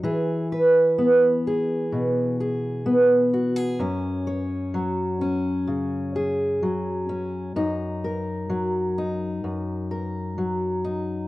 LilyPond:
\new Staff \with { instrumentName = "Steel-string acoustic guitar" } { \time 4/4 \key fis \mixolydian \tempo 4 = 64 << { gis'8 b'4 gis'4 gis'4 fis'16 gis'16 | cis'8 cis''4 cis'4 gis'4 cis'8 | dis'8 ais'4 dis'4 ais'4 dis'8 | } \\ { e4 b4 b,4 b4 | fis,4 fis4 cis4 fis4 | fis,4 fis4 fis,4 fis4 | } >> }